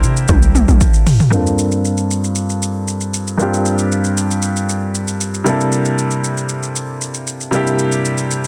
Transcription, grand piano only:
0.00 1.27 A#3 medium
0.00 1.28 D4 medium
0.00 1.28 E4 medium
0.00 1.29 G4 medium
0.00 1.34 A#4 medium
0.00 1.33 C5 medium
1.30 3.34 G2 medium
1.30 3.35 A#3 medium
1.30 3.35 C4 medium
1.30 3.36 D4 medium
1.30 3.36 F4 medium
1.35 3.37 A4 medium
3.38 5.41 G2 medium
3.38 5.42 A#3 medium
3.38 5.42 C4 medium
3.38 5.43 D4 medium
3.38 5.43 F4 medium
3.42 5.44 G4 medium
5.44 7.48 C3 medium
5.44 7.49 G3 medium
5.44 7.49 A#3 medium
5.44 7.50 D4 medium
5.44 7.50 E4 medium
5.49 7.50 A4 medium
7.51 8.47 C3 medium
7.51 8.47 G3 medium
7.51 8.47 A#3 medium
7.51 8.47 D4 medium
7.51 8.47 E4 medium
7.56 8.47 G4 medium

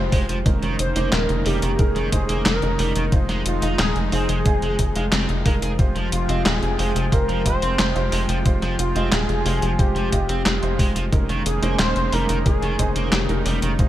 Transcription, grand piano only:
0.00 0.42 G#3 loud
0.00 0.42 F4 medium
0.00 0.42 G4 medium
0.00 0.42 C5 loud
0.46 0.92 G#3 medium
0.46 0.92 C#4 medium
0.46 0.92 D#4 medium
0.46 0.92 A#4 medium
0.96 1.42 G#3 loud
0.96 1.42 C#4 loud
0.96 1.42 D#4 medium
0.96 1.42 C5 loud
1.46 1.75 G#3 medium
1.46 1.75 C#4 medium
1.46 1.75 D#4 medium
1.46 1.75 A#4 loud
1.79 2.08 G#3 medium
1.79 2.09 C#4 medium
1.79 2.08 D#4 medium
1.79 2.09 A#4 loud
2.12 2.58 G#3 medium
2.12 2.59 C#4 medium
2.12 2.59 D#4 medium
2.12 2.58 C5 loud
2.63 3.09 G#3 loud
2.63 3.09 C#4 medium
2.63 3.09 D#4 medium
2.63 3.09 A#4 loud
3.12 3.58 G#3 medium
3.12 3.58 D#4 medium
3.12 3.58 F4 medium
3.12 3.58 C5 medium
3.63 4.09 G#3 loud
3.63 4.08 D#4 medium
3.63 4.09 F4 medium
3.63 4.08 D#5 loud
4.12 4.42 G#3 medium
4.12 4.42 D#4 medium
4.12 4.42 F4 medium
4.12 4.42 C5 loud
4.46 4.75 G#3 medium
4.46 4.75 D#4 medium
4.46 4.75 F4 medium
4.46 4.75 C5 medium
4.96 5.42 G#3 medium
4.96 5.42 D#4 medium
4.96 5.42 F4 medium
4.96 5.42 F5 loud
5.46 5.75 G#3 medium
5.46 5.75 D#4 medium
5.46 5.75 F4 medium
5.46 5.75 A#4 loud
5.79 6.25 G#3 medium
5.79 6.25 F4 medium
5.79 6.25 G4 medium
5.79 6.25 C5 medium
6.29 6.75 G#3 loud
6.29 6.75 F4 medium
6.29 6.75 G4 loud
6.29 6.75 D#5 loud
6.79 7.08 G#3 medium
6.79 7.08 F4 medium
6.79 7.08 G4 medium
6.79 7.08 C5 loud
7.12 7.42 G#3 medium
7.12 7.42 F4 medium
7.12 7.42 G4 medium
7.12 7.42 C5 loud
7.46 7.92 G#3 loud
7.46 7.92 F4 medium
7.46 7.92 G4 medium
7.46 7.92 D#5 loud
7.96 8.42 G#3 loud
7.96 8.42 F4 medium
7.96 8.42 G4 medium
7.96 8.42 C5 loud
8.46 8.92 G#3 medium
8.46 8.92 F4 medium
8.46 8.92 G4 medium
8.46 8.92 C5 medium
8.96 9.42 G#3 loud
8.96 9.42 F4 loud
8.96 9.42 G4 medium
8.96 9.42 D#5 loud
9.46 9.75 G#3 medium
9.46 9.75 F4 medium
9.46 9.75 G4 medium
9.46 9.75 C5 loud
9.79 10.09 G#3 medium
9.79 10.09 F4 medium
9.79 10.09 G4 medium
9.79 10.08 C5 medium
10.12 10.58 G#3 medium
10.12 10.58 F4 medium
10.12 10.58 G4 medium
10.12 10.59 D#5 loud
10.62 11.08 G#3 loud
10.62 11.08 F4 medium
10.62 11.08 G4 medium
10.62 11.09 C5 loud
11.12 11.58 G#3 medium
11.12 11.58 C#4 medium
11.12 11.59 D#4 medium
11.12 11.58 A#4 medium
11.63 12.09 G#3 loud
11.63 12.09 C#4 medium
11.63 12.09 D#4 loud
11.63 12.08 C5 loud
12.13 12.42 G#3 medium
12.13 12.42 C#4 medium
12.13 12.42 D#4 medium
12.13 12.42 A#4 medium
12.46 12.75 G#3 medium
12.46 12.75 C#4 medium
12.46 12.75 D#4 medium
12.46 12.75 A#4 medium
12.79 13.25 G#3 loud
12.79 13.25 C#4 medium
12.79 13.25 D#4 medium
12.79 13.25 C5 loud
13.29 13.75 G#3 loud
13.29 13.75 C#4 medium
13.29 13.75 D#4 medium
13.29 13.75 A#4 loud
13.79 13.89 G#3 medium
13.79 13.89 D#4 medium
13.79 13.89 F4 medium
13.79 13.89 C5 medium

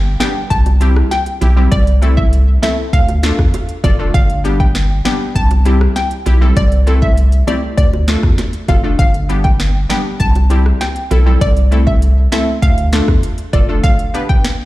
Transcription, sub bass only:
0.00 0.16 G1 loud
0.51 1.03 C2 loud
1.42 1.68 B1 medium
1.72 2.59 C2 loud
2.93 3.33 D2 loud
3.39 3.52 E2 medium
3.84 4.10 F1 loud
4.14 5.01 G1 loud
5.35 5.88 C2 loud
6.26 6.53 B1 medium
6.57 7.44 C2 loud
7.78 8.17 D2 loud
8.23 8.36 E2 medium
8.69 8.95 F1 loud
8.99 9.86 G1 loud
10.20 10.73 C2 loud
11.11 11.37 B1 loud
11.41 12.28 C2 loud
12.62 13.02 D2 loud
13.08 13.21 E2 medium
13.53 13.80 F1 loud

